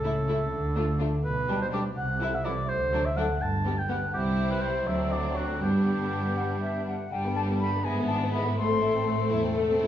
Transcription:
Already playing: double bass section C#2, cello section C#3, oboe A4
0.04 viola section A3, violin section E4
0.28 viola section A3, violin section E4
0.52 double bass section D2, cello section D3
0.76 viola section A3, violin section D4 F4
1.00 viola section A3, violin section D4 F4
1.24 double bass section B1, cello section B2, oboe B4
1.48 viola section G3, violin section D4 G4
1.62 oboe C5
1.73 viola section G3, violin section D4 G4, oboe D5
1.96 double bass section C2, cello section C3, oboe F#5
2.20 viola section E3, violin section E4 A4
2.35 oboe E5
2.44 viola section E3, violin section E4 A4, oboe D5
2.68 double bass section D2, cello section D3, oboe C5
2.92 viola section F#3, violin section D4 A4
3.05 oboe E5
3.16 viola section F#3, violin section D4 A4, oboe F#5
3.40 double bass section G1, cello section G2, oboe A5
3.65 viola section G3, violin section B3 G4
3.78 oboe G5
3.89 viola section G3, violin section B3 G4, oboe F#5
4.13 double bass section C2, cello section C3, viola section G3, violin section C4 E4, oboe G4
4.51 oboe B4
4.62 oboe C5
4.87 double bass section D2, cello section D3, viola section F#3, violin section C4 D4, oboe E5
5.12 oboe D5
5.37 oboe F#4
5.62 double bass section G1, cello section G2, viola section G3, violin section B3 D4, oboe G4
6.37 flute F#5
6.61 flute E5
6.87 flute F#5
7.11 double bass section G1, cello section G2, violin section G3 D4, viola section G3, flute G5
7.24 violin section B3
7.35 violin section G3, flute A5
7.48 violin section B3
7.60 violin section G3, flute B5
7.72 violin section B3
7.83 double bass section G#1, cello section G#2, violin section G#3 E4, viola section B3, flute G#5
7.96 violin section B3
8.08 violin section D4, flute A5
8.20 violin section B3
8.32 violin section G#3, flute B5
8.44 violin section B3
8.56 double bass section A1, cello section A2, violin section A3 A4, viola section A3, flute C6
8.68 violin section C4
8.80 violin section E4
8.93 violin section C4
9.05 violin section A3
9.18 violin section C4
9.29 double bass section E1, cello section E2, violin section E4
9.42 violin section C4
9.55 violin section A3
9.68 violin section C4
9.79 violin section E4

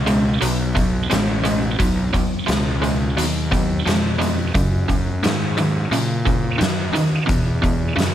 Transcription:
Already playing: fingered electric bass C#2
0.06 overdriven electric guitar B2 G#3, closed hi-hat
0.41 fingered electric bass B1, overdriven electric guitar B2 F#3, closed hi-hat
0.75 overdriven electric guitar B2 F#3, kick, closed hi-hat
1.10 fingered electric bass A1, overdriven electric guitar B2 G#3, snare, closed hi-hat
1.44 overdriven electric guitar B2 G#3, closed hi-hat
1.79 fingered electric bass B1, overdriven electric guitar B2 F#3, kick, closed hi-hat
2.13 overdriven electric guitar B2 F#3, kick, closed hi-hat
2.47 fingered electric bass C#2, overdriven electric guitar B2 G#3, snare, closed hi-hat
2.82 overdriven electric guitar B2 G#3, closed hi-hat
3.17 fingered electric bass D#2, overdriven electric guitar B2 F#3, closed hi-hat
3.51 overdriven electric guitar B2 F#3, kick, closed hi-hat
3.86 fingered electric bass F2, overdriven electric guitar B2 G#3, snare, closed hi-hat
4.18 overdriven electric guitar B2 G#3, closed hi-hat
4.54 overdriven electric guitar F#2 C#3, fingered electric bass F#2, kick, closed hi-hat
4.88 overdriven electric guitar F#2 C#3, kick, closed hi-hat
5.23 overdriven electric guitar F#2 D#3, fingered electric bass G#2, snare, closed hi-hat
5.57 overdriven electric guitar F#2 D#3, closed hi-hat
5.91 overdriven electric guitar F#2 C#3, fingered electric bass A#2, closed hi-hat
6.25 overdriven electric guitar F#2 C#3, kick, closed hi-hat
6.58 overdriven electric guitar F#2 D#3, fingered electric bass F#2, closed hi-hat
6.63 snare
6.93 overdriven electric guitar F#2 D#3, muted fingered electric bass stroke, closed hi-hat
7.27 overdriven electric guitar E2 B2, fingered electric bass E2, kick, closed hi-hat
7.62 overdriven electric guitar E2 B2, kick, closed hi-hat
7.96 overdriven electric guitar E2 C#3, fingered electric bass F#2, closed hi-hat
8.00 snare

